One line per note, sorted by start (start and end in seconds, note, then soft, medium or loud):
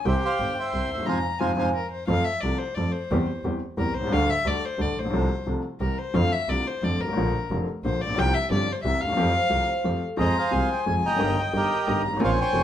0.05 0.20 C2 medium
0.05 0.20 C3 medium
0.05 0.20 E3 medium
0.05 0.20 G3 medium
0.05 0.20 C4 medium
0.05 0.20 G4 medium
0.05 0.54 G4 medium
0.05 0.24 C5 medium
0.05 0.15 E5 medium
0.05 0.71 G5 medium
0.25 0.58 C5 medium
0.25 0.55 F5 medium
0.39 0.54 G1 medium
0.39 0.54 G2 medium
0.59 1.05 C5 medium
0.59 0.92 E5 medium
0.59 0.90 G5 medium
0.72 0.87 C2 medium
0.72 0.88 C2 soft
0.72 0.87 C3 soft
0.72 1.07 C6 medium
0.89 1.06 D#2 medium
0.89 1.07 E5 medium
0.95 0.99 D2 soft
0.95 1.03 D#2 medium
1.02 1.07 E2 medium
1.02 1.17 G#2 medium
1.02 1.41 A#5 medium
1.06 1.19 F2 medium
1.06 1.18 C3 medium
1.06 1.18 F3 medium
1.06 1.17 C5 medium
1.06 1.19 C5 medium
1.06 1.17 F5 medium
1.06 1.18 F5 medium
1.06 1.17 G#5 medium
1.06 1.19 G#5 medium
1.38 1.53 F2 medium
1.38 1.51 G#2 medium
1.38 1.51 C3 medium
1.38 1.51 F3 medium
1.38 1.50 C5 medium
1.38 1.51 C5 medium
1.38 1.51 F5 medium
1.38 1.52 F5 medium
1.38 1.50 G#5 medium
1.38 1.74 G#5 medium
1.38 1.52 G#5 medium
1.55 1.70 F2 medium
1.55 1.68 G#2 medium
1.55 1.68 C3 medium
1.55 1.68 F3 medium
1.55 1.67 C5 medium
1.55 1.69 C5 medium
1.55 1.67 F5 medium
1.55 1.69 F5 medium
1.55 1.67 G#5 medium
1.55 1.69 G#5 medium
1.75 1.90 A#4 medium
1.91 2.07 C5 medium
2.07 2.23 F2 medium
2.07 2.23 F3 medium
2.07 2.23 A3 medium
2.07 2.23 C4 medium
2.07 2.23 A4 medium
2.07 2.26 F5 medium
2.24 2.42 E5 medium
2.41 2.57 C2 medium
2.41 2.57 C3 medium
2.41 2.57 F3 soft
2.41 2.57 A3 soft
2.41 2.58 C4 soft
2.41 2.58 A4 medium
2.41 2.60 D5 medium
2.58 2.76 C5 medium
2.74 2.91 F2 medium
2.74 2.92 F3 medium
2.74 2.91 A3 soft
2.74 2.91 C4 soft
2.74 2.91 A4 medium
2.74 2.94 D5 medium
2.92 3.44 C5 medium
3.11 3.25 E2 medium
3.11 3.25 E3 medium
3.11 3.25 G3 medium
3.11 3.25 C4 medium
3.11 3.26 G4 medium
3.44 3.58 E2 medium
3.44 3.59 E2 medium
3.44 3.59 E3 medium
3.44 3.59 G3 soft
3.44 3.58 C4 soft
3.44 3.59 G4 medium
3.77 3.92 E2 medium
3.77 3.92 E3 medium
3.77 3.92 G3 medium
3.77 3.92 C4 soft
3.77 3.92 G4 medium
3.77 3.96 A#4 medium
3.94 4.10 C2 medium
3.94 4.14 C5 loud
4.00 4.04 B1 medium
4.00 4.07 C2 medium
4.07 4.12 C#2 medium
4.11 4.26 D2 loud
4.11 4.26 D2 medium
4.11 4.26 D3 medium
4.11 4.26 G3 medium
4.11 4.26 A3 medium
4.11 4.26 D4 medium
4.11 4.26 A4 medium
4.11 4.31 F5 loud
4.30 4.49 E5 loud
4.45 4.59 D2 medium
4.45 4.60 D2 medium
4.45 4.59 D3 medium
4.45 4.59 G3 medium
4.45 4.60 A3 soft
4.45 4.60 D4 soft
4.45 4.60 A4 medium
4.45 4.66 D5 medium
4.65 4.83 C5 medium
4.78 4.93 D2 medium
4.78 4.93 D3 medium
4.78 4.93 G3 soft
4.78 4.93 A3 soft
4.78 4.93 D4 soft
4.78 4.93 A4 medium
4.78 5.00 D5 medium
4.95 5.04 A1 soft
4.95 5.12 A#1 medium
4.95 5.48 C5 medium
5.05 5.09 A#1 medium
5.10 5.13 B1 medium
5.10 5.27 C2 loud
5.10 5.27 C2 medium
5.10 5.27 C3 medium
5.10 5.27 F3 medium
5.10 5.27 A3 medium
5.10 5.27 C4 medium
5.10 5.27 A4 medium
5.46 5.61 C2 medium
5.46 5.61 C3 medium
5.46 5.61 F3 soft
5.46 5.61 A3 soft
5.46 5.61 C4 soft
5.46 5.61 A4 medium
5.80 5.95 C2 medium
5.80 5.95 C3 medium
5.80 5.95 E3 soft
5.80 5.95 G3 soft
5.80 5.95 C4 soft
5.80 5.95 G4 medium
5.80 5.99 A#4 medium
5.98 6.16 C5 medium
6.14 6.29 F2 medium
6.14 6.29 F2 loud
6.14 6.28 D3 medium
6.14 6.28 F3 medium
6.14 6.28 A3 medium
6.14 6.29 C4 medium
6.14 6.29 F4 medium
6.14 6.34 F5 loud
6.32 6.50 E5 medium
6.48 6.63 C2 medium
6.48 6.63 C3 medium
6.48 6.63 D3 soft
6.48 6.62 A3 soft
6.48 6.63 C4 soft
6.48 6.63 F4 medium
6.48 6.68 D5 medium
6.67 6.85 C5 medium
6.82 6.96 F2 medium
6.82 6.97 F2 medium
6.82 6.96 D3 medium
6.82 6.97 F3 medium
6.82 6.96 A3 soft
6.82 6.97 C4 soft
6.82 6.97 F4 medium
6.82 7.02 D5 medium
6.99 7.15 G#1 medium
6.99 7.50 A#4 medium
7.05 7.08 G1 medium
7.05 7.12 G#1 medium
7.13 7.16 A1 medium
7.13 7.30 A#1 loud
7.13 7.30 A#2 medium
7.13 7.30 D3 medium
7.17 7.31 A#1 medium
7.17 7.31 F3 medium
7.17 7.31 A#3 medium
7.17 7.31 F4 medium
7.50 7.64 F1 medium
7.50 7.65 F2 medium
7.50 7.64 D3 medium
7.50 7.64 F3 soft
7.50 7.65 A#3 soft
7.50 7.65 F4 medium
7.84 7.98 A#1 medium
7.84 7.98 A#2 medium
7.84 7.98 D3 medium
7.84 7.98 F3 soft
7.84 7.98 A#3 soft
7.84 7.98 F4 medium
7.84 8.03 C5 medium
8.01 8.17 A#1 medium
8.01 8.20 D5 loud
8.06 8.09 A1 medium
8.06 8.13 A#1 medium
8.14 8.18 B1 medium
8.14 8.31 C2 loud
8.14 8.32 C2 medium
8.14 8.32 C3 medium
8.14 8.31 F3 medium
8.14 8.32 G3 medium
8.14 8.32 C4 medium
8.14 8.32 G4 medium
8.19 8.35 G5 loud
8.34 8.51 E5 loud
8.50 8.65 G1 medium
8.50 8.65 G2 medium
8.50 8.65 F3 medium
8.50 8.65 G3 soft
8.50 8.65 C4 soft
8.50 8.65 G4 medium
8.50 8.74 D5 medium
8.72 8.83 C5 medium
8.84 8.98 C2 medium
8.84 8.98 C3 medium
8.84 8.98 E3 medium
8.84 8.98 G3 soft
8.84 8.98 C4 soft
8.84 8.99 G4 medium
8.84 9.02 E5 medium
9.01 9.09 D2 medium
9.01 9.17 D#2 medium
9.01 10.02 F5 loud
9.08 9.13 D#2 medium
9.08 9.17 E2 medium
9.16 9.31 F2 medium
9.16 9.32 F2 loud
9.16 9.31 F3 medium
9.16 9.31 A3 medium
9.16 9.31 C4 medium
9.16 9.31 G4 medium
9.35 9.87 C5 loud
9.49 9.65 C2 medium
9.49 9.65 C3 medium
9.49 9.65 F3 medium
9.49 9.64 A3 soft
9.49 9.65 C4 soft
9.49 9.65 G4 medium
9.84 9.99 F2 medium
9.84 9.99 F3 medium
9.84 9.99 A3 soft
9.84 9.99 C4 soft
9.84 9.99 G4 medium
9.84 10.17 A4 medium
10.17 10.32 F2 medium
10.17 10.33 F2 medium
10.17 10.32 F3 medium
10.17 10.32 G#3 medium
10.17 10.32 C4 medium
10.17 10.33 G#4 medium
10.17 10.37 G#4 medium
10.17 10.37 C5 medium
10.17 10.35 D#5 medium
10.17 10.53 A#5 medium
10.38 10.85 G#4 medium
10.38 10.85 C5 medium
10.38 10.69 F5 medium
10.51 10.66 C2 medium
10.51 10.67 C2 medium
10.51 10.66 C3 medium
10.51 10.66 F3 soft
10.51 10.67 G#3 soft
10.51 10.66 C4 soft
10.51 10.66 G#4 medium
10.51 11.22 G#5 medium
10.72 10.79 G5 medium
10.86 11.01 F2 medium
10.86 11.01 F3 medium
10.86 11.01 G#3 soft
10.86 11.01 C4 soft
10.86 11.01 G#4 medium
10.86 10.95 G#5 medium
11.03 11.20 F1 medium
11.03 11.12 E2 soft
11.03 11.52 D#5 medium
11.03 11.37 G5 medium
11.03 11.40 A#5 medium
11.11 11.16 F2 medium
11.15 11.34 G1 medium
11.15 11.20 F#2 medium
11.15 11.34 G2 medium
11.15 11.34 D#3 medium
11.15 11.34 A#3 medium
11.19 11.35 G1 loud
11.19 11.34 G3 medium
11.19 11.34 G4 medium
11.19 11.88 G5 medium
11.39 11.46 G5 medium
11.53 11.68 G1 medium
11.53 11.69 G1 medium
11.53 11.68 G2 medium
11.53 11.68 D#3 medium
11.53 11.68 G3 soft
11.53 11.68 A#3 soft
11.53 11.68 G4 medium
11.53 12.02 G4 medium
11.53 12.02 D#5 medium
11.57 12.03 A#4 medium
11.87 12.02 G1 medium
11.87 12.02 G2 medium
11.87 12.02 D#3 medium
11.87 12.02 G3 soft
11.87 12.02 A#3 soft
11.87 12.02 G4 medium
11.87 12.22 A#5 medium
12.05 12.13 G1 medium
12.05 12.21 G#1 medium
12.13 12.17 G#1 medium
12.13 12.21 A1 medium
12.20 12.35 A#1 medium
12.20 12.36 A#1 loud
12.20 12.35 A#2 medium
12.20 12.35 C#3 medium
12.20 12.34 A#3 medium
12.20 12.35 C4 medium
12.20 12.35 F4 medium
12.20 12.63 G#5 loud
12.24 12.40 C5 medium
12.24 12.39 C#5 medium
12.24 12.31 F5 loud
12.41 12.63 C5 medium
12.41 12.63 C#5 medium
12.41 12.63 G5 loud
12.52 12.63 F1 medium
12.52 12.63 F2 medium
12.52 12.63 C#3 medium
12.52 12.63 A#3 soft
12.52 12.63 C4 soft
12.52 12.63 F4 medium